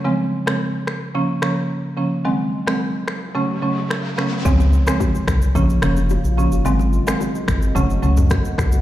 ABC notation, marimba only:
X:1
M:4/4
L:1/16
Q:1/4=109
K:Db
V:1 name="Marimba" clef=bass
[D,F,A,C]2 z [D,F,A,C] z4 [D,F,B,D]2 [D,F,B,D]2 z2 [D,F,B,D]2 | [E,G,A,C]2 z [E,G,A,C] z4 [D,G,=A,D]2 [D,G,A,D]2 z2 [D,G,A,D]2 | [D,F,A,C]2 z [D,F,A,C] z4 [D,F,B,D]2 [D,F,B,D]2 z2 [D,F,B,D]2 | [E,G,A,C]2 z [E,G,A,C] z4 [D,G,=A,D]2 [D,G,A,D]2 z4 |]